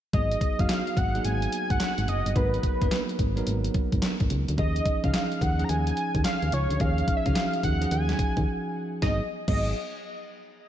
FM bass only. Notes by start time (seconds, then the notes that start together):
0.14 G#1
0.59 F#1
0.97 G#1
1.25 G#1
1.70 G#1
1.98 G#1
2.08 F#1
2.26 G1
2.36 G#1
2.82 F#1
3.19 G#1
3.48 G#1
3.93 G#1
4.21 G#1
4.31 C#2
4.49 D2
4.58 D#2
5.04 C#2
5.42 D#2
5.70 D#2
6.15 D#2
6.43 D#2
6.53 C#2
6.71 D2
6.80 D#2
7.26 C#2
7.64 D#2
7.92 D#2
8.37 D#2
9.03 G#1
9.48 G#1